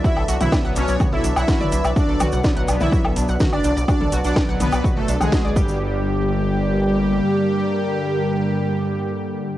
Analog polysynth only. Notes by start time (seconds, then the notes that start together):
0.04 E4
0.41 E4
0.76 C#4
1.13 E4
1.36 E4
1.96 D4
2.81 E4
3.52 D4
3.88 D4
4.24 D4
4.60 B3
4.96 A3
5.20 G#3
5.56 G3